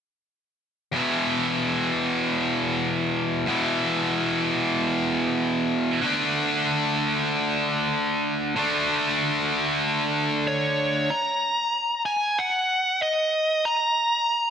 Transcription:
0.92 E2 B2
0.96 E3
3.46 E2 B2 E3
6.02 D3 A3 D4
8.56 D3 A3 D4
10.48 C#5
11.10 A#5
12.06 G#5
12.39 F#5
13.02 D#5
13.65 A#5

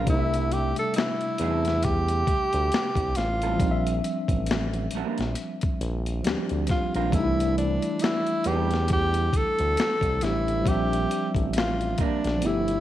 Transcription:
0.03 C2 C3 G3, kick, closed hi-hat
0.08 A3 D4 E4
0.13 D#4
0.19 E5
0.34 closed hi-hat
0.52 G4, closed hi-hat
0.76 A4, closed hi-hat
0.94 E4, muted clean electric guitar stroke, closed hi-hat
0.98 snare
1.21 closed hi-hat
1.38 E2 G3 C4 E4 A4, closed hi-hat
1.65 snare, closed hi-hat
1.83 G4, kick, closed hi-hat
2.08 closed hi-hat
2.27 D2, kick, closed hi-hat
2.53 D2, closed hi-hat
2.72 snare, closed hi-hat
2.95 C2, kick, closed hi-hat
3.15 A1 F4, snare, closed hi-hat
3.42 G3 C4 E4 A4, closed hi-hat
3.56 F3 G3
3.60 A#1 C4 D4, kick, closed hi-hat
3.65 D#4
3.71 E5
3.87 closed hi-hat
4.04 closed hi-hat
4.28 A1, kick, closed hi-hat
4.46 closed hi-hat
4.51 muted clean electric guitar stroke, snare
4.74 closed hi-hat
4.91 A#1, closed hi-hat
4.95 A#3 D4 G4 A#4
5.18 A#1, snare, closed hi-hat
5.35 closed hi-hat
5.61 kick, closed hi-hat
5.81 A#1, closed hi-hat
6.06 closed hi-hat
6.22 D2 F3 G3 C4 D4, closed hi-hat
6.27 G4, snare
6.49 D2, closed hi-hat
6.67 F4, kick, snare, closed hi-hat
6.95 A#1 A#3 D4 F4 G4 A#4, closed hi-hat
7.08 E3 G3
7.12 C2 A3 D4 E4, kick, closed hi-hat
7.17 D#4
7.23 E4
7.40 closed hi-hat
7.58 D4, closed hi-hat
7.82 closed hi-hat
7.99 E4, muted clean electric guitar stroke, closed hi-hat
8.04 snare
8.27 closed hi-hat
8.44 E2 G3 C4 E4 G4 A4, closed hi-hat
8.71 snare, closed hi-hat
8.88 kick, closed hi-hat
8.92 G4
9.14 closed hi-hat
9.33 D2 A4, kick, closed hi-hat
9.59 D2, closed hi-hat
9.77 snare, closed hi-hat
10.01 C2, kick, closed hi-hat
10.20 A1 E3 G3 A3 D4 E4, closed hi-hat
10.24 G4, snare
10.48 closed hi-hat
10.61 F3 G3
10.66 A#1 C4 D4 G4, kick, closed hi-hat
10.71 E5
10.93 closed hi-hat
11.11 closed hi-hat
11.35 A1, kick, closed hi-hat
11.53 muted clean electric guitar stroke, closed hi-hat
11.58 F4, snare
11.81 closed hi-hat
11.98 A#1 A#3 D4 G4 A#4, kick, closed hi-hat
12.02 D4
12.24 A#1, snare, closed hi-hat
12.37 F3 A3
12.42 G1 B3 E4, closed hi-hat
12.46 E4 G4
12.68 closed hi-hat

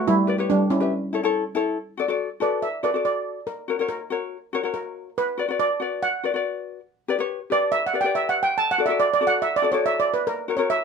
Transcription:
0.08 G3 E4
0.27 G4 B4 D5
0.38 G4 B4 C#5
0.50 G3 D4
0.70 C#4 E4
0.80 G4 B4 E5
1.13 E4 A4 C#5
1.23 E4 A4 C#5
1.55 E4 A4 C#5
1.97 F#4 A4 D5
2.08 F#4 A4 D5
2.40 F#4 A4 B4 D5
2.62 E5
2.83 F#4 A4 B4 D5
2.94 F#4 A4 D5
3.05 D5
3.47 A#4
3.68 F#4 A#4 C#5
3.79 F#4 A#4 C#5
3.89 A#4
4.10 F#4 A#4 C#5
4.53 F#4 A#4 C#5
4.63 F#4 A#4 C#5
4.74 A#4
5.18 B4
5.38 F#4 B4 D5
5.48 F#4 B4 D5
5.60 D5
5.80 F#4 B4 D5
6.03 F#5
6.24 F#4 B4 D5
6.34 F#4 B4 D5
7.08 G4 B4 D5
7.19 G4 B4 C#5
7.50 G4 B4 D5
7.72 E5
7.86 F#5
7.93 G4 B4 D5
8.01 G4 G5
8.05 B4 D5
8.15 E5
8.29 F#5
8.43 G5
8.58 A5
8.71 F#5
8.78 F#4 A4 D5
8.86 F#4 A4 E5
8.90 D5
9.00 D5
9.14 D5
9.21 F#4 A4 D5
9.27 F#5
9.42 E5
9.56 D5
9.62 F#4 A4 D5
9.72 F#4 A4 C#5 D5
9.86 E5
10.00 D5
10.14 B4
10.27 A#4
10.48 F#4 A#4 C#5
10.57 F#4 A#4 C#5
10.70 E5

